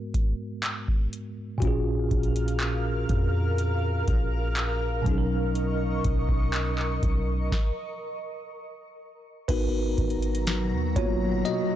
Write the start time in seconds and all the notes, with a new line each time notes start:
Already playing: G#2 G#3 B3 F#4 A#4
0.14 kick, closed hi-hat
0.63 clap, closed hi-hat
0.88 kick
1.13 closed hi-hat
1.58 A#2 F#4 A#4 F5 F6, kick, closed hi-hat
1.62 A#1 C#4 F4
1.67 G#4
2.11 A#1, kick, closed hi-hat
2.23 closed hi-hat
2.36 closed hi-hat
2.48 closed hi-hat
2.60 clap, closed hi-hat
3.09 F2, kick, closed hi-hat
3.58 closed hi-hat
4.08 A#1, kick, closed hi-hat
4.57 clap, closed hi-hat
5.02 B2 F#3 D#5 C#6
5.06 B1 C#4 D#4, kick, closed hi-hat
5.11 G#4
5.18 A#4
5.55 closed hi-hat
6.04 B1, kick, closed hi-hat
6.29 kick
6.54 clap, closed hi-hat
6.79 clap
7.03 B1, kick, closed hi-hat
7.52 kick, snare
9.48 G#1 B2 F#3 B3 D#4 F#4 A#4 B4 A#5, kick, closed hi-hat, crash
9.98 G#1, kick, closed hi-hat
10.10 closed hi-hat
10.22 closed hi-hat
10.35 closed hi-hat
10.47 snare, closed hi-hat
10.72 D#2
10.96 G#1 A#3 B3 F4 F#4 C#5, kick, closed hi-hat
11.45 F#4 D#5, closed hi-hat